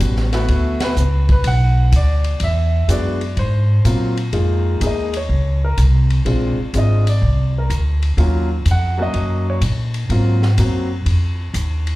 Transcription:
Already playing: G3 B3 C#4 F#4
0.00 A1, kick, hi-hat pedal, ride
0.16 snare
0.32 A3 B3 E4 F#4, snare, ride
0.48 D2, kick, ride
0.80 B4, snare, ride
0.96 C#2, hi-hat pedal
1.29 B4, kick, ride
1.44 B1 F#5, kick, ride
1.92 D2, kick, hi-hat pedal, ride
1.96 D5
2.24 ride
2.40 E2 E5, kick, ride
2.88 F#2 G#3 B3 D4 F#4 D5, kick, hi-hat pedal, ride
3.21 ride
3.37 G#2 C5, kick, ride
3.85 A#2 F#3 A#3 C4 F4, kick, hi-hat pedal, ride
4.17 ride
4.33 F2 G#3 A#3 D#4 F4, kick, ride
4.81 D#2 G#3 A#3 D#4 G#4, kick, hi-hat pedal, ride
4.87 D#5
5.14 C#5, ride
5.29 C#2, kick
5.64 A#4
5.78 C2, kick, hi-hat pedal, ride
6.10 ride
6.25 A#1 G#3 C4 D4 F4, kick, ride
6.57 muted upright bass stroke
6.73 G#1 G#3 C4 D4 F4, kick, hi-hat pedal, ride
6.78 D#5
7.07 D5, ride
7.22 C2, kick
7.58 A#4
7.70 D2, kick, hi-hat pedal, ride
8.03 ride
8.17 D#2 F#3 A#3 C#4 F4, kick, ride
8.65 F2, kick, hi-hat pedal, ride
8.71 F#5
8.98 F#3 A#3 C#4 F#4
9.02 D#5
9.13 F#2, kick, ride
9.50 C#5
9.61 A#2, kick, hi-hat pedal, ride
9.94 ride
10.09 G#2 F#3 A#3 C4 F4, kick, ride
10.42 snare
10.58 F#2 F#3 A#3 C4 F#4, kick, hi-hat pedal, ride
11.06 F2, kick, ride
11.54 D#2, kick, hi-hat pedal, ride
11.87 ride

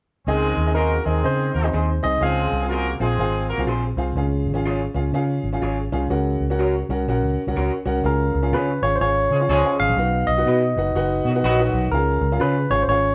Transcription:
0.27 C#2 C#3 D#3 G#3 C4 D#4 G#4 D#5
0.57 D#2
0.66 C4 D#4 G#4 D#5
0.74 A#3 D#4 F#4 G#4 A#4 C5
1.05 D#2 D#3 G#3 C4 D#4 G#4 D#5
1.23 C#3 C4 D#4 G#4 C5 D#5
1.53 D#2 A#3 F#4 A#4
1.64 C4 D#4 G#4 D#5
1.73 D#2 D#4 G#4 C5
2.03 C2 C4 D#4 G#4 D#5
2.20 C#2 F3 G#3 C4 C#4 F4 G#4 F5
2.52 C2
2.62 C4 F4 G#4 F5
2.69 A#3 F4 F#4 G#4 A#4 C5
3.00 A#1 F3 G#3 C4 F4 G#4 F5
3.18 G#1 C4 F4 G#4 F5
3.49 A#3 F#4 A#4
3.58 C2 C4 F4 G#4 F5
3.66 A#1 F4 G#4 C5
3.97 C2 C4 F4 G#4 F5
4.15 C#2 C#3 C#4 F4 G#4 F5
4.46 G#1
4.54 C#4 F4 G#4 F5
4.66 F4 G#4 C#5
4.94 C#2 C#4 F4 G#4 F5
5.13 C#3 C#4 F4 G#4 F5
5.44 G#1
5.53 C#4 F4 G#4 F5
5.62 G#1 F4 G#4 C#5
5.92 C2 C#4 F4 G#4 F5
6.10 C#2 C#3 C#4 F#4 A#4 F#5
6.40 C#2
6.50 C#4 F#4 A#4 F#5
6.59 F#4 A#4 C#5
6.89 C2 C#4 F#4 A#4 F#5
7.08 A#1 C#4 F#4 A#4 F#5
7.23 C#2
7.47 C2 C#4 F#4 A#4 F#5
7.56 C#2 F#4 A#4 C#5
7.85 C2 C#4 F#4 A#4 F#5
8.04 C#2 C#3 C#4 F4 G#4 A#4 F5
8.34 C#2
8.43 C#4 F4 G#4 F5
8.52 C#3 F4 G#4 B4 C#5
8.82 G#1 C#4 F4 G#4 C#5 F5
8.96 C5
9.00 G#1 C#4 F4 G#4 C#5 F5
9.31 C#3 F3 G#3 C#4 G#4
9.41 C#4 F4 G#4 F5
9.49 C#2 F3 G#3 C#4 F4 G#4 C#5
9.65 C#4 F4 G#4 F5
9.80 G#1 F5
9.88 A#1
9.97 B1 B2 D#4 F#4 B4 F#5
10.27 B1 D#5
10.37 D#4 F#4 B4 F#5
10.46 B2 F#4 B4 D#5
10.76 F#1 D#4 F#4 B4 F#5
10.95 F#1 D#4 F#4 B4 F#5
11.25 B2 D#3 F#3 B3 F#4
11.34 D#4 F#4 B4 F#5
11.43 A#1 D#3 F#3 B3 F#4 B4 D#5
11.60 D#4 F#4 B4 F#5
11.73 B1
11.91 C#2 C#3 C#4 F4 G#4 A#4 F5
12.21 C#2
12.32 C#4 F4 G#4 F5
12.40 C#3 F4 G#4 B4 C#5
12.70 G#1 C#4 F4 G#4 C#5 F5
12.82 C5
12.88 G#1 C#4 F4 G#4 C#5 F5

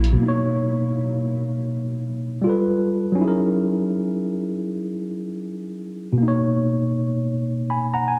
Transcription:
Already playing: A#1 F#3 A#3 E4 G#4 A#4 D#5
0.04 closed hi-hat
0.13 B2
0.18 A#3
0.23 D#4
0.28 C#5
2.42 G3 F4
2.47 A4 B4
3.12 F#3 C#4
3.18 D#4 E4
3.25 G#4 A#4
6.13 B2
6.18 A#3
6.23 D#4
6.28 C#5
7.70 G#5 B5
7.94 F#5 A#5
8.08 G#5

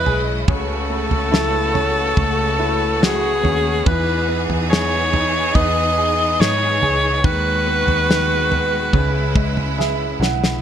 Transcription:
Already playing: C#3 G#3 E4 G#4 B4 D#5
0.06 B1 G#4, floor tom
0.48 C#2 C#3 A3 B3 F#4 A4, kick, floor tom
0.90 A3
1.11 C#2, floor tom
1.31 E4, snare
1.74 C#4, floor tom
2.17 C#2 A3, kick, floor tom
2.59 E4
3.01 F#4 G#4, snare
3.43 D#2 C#4, floor tom
3.85 E2 E3 D#4 G#4 B4, kick, floor tom
4.28 B3
4.50 E2, floor tom
4.70 G#4 C#5, snare
5.13 D#4, floor tom
5.55 E2 B3 D#5, kick, floor tom
5.98 G#4
6.40 G#2 D#4 C#5, snare
6.82 C#2 G#4, floor tom
7.24 D#2 D#3 G#3 F#4 B4, kick, floor tom
7.67 B3
7.87 D#2, floor tom
8.09 D#3, snare
8.51 B3, floor tom
8.93 C#2 C#3 E4, kick, floor tom
9.35 G#3, kick
9.57 floor tom
9.78 G#4 E5, snare
10.20 B1 E4 F#5, snare
10.44 snare

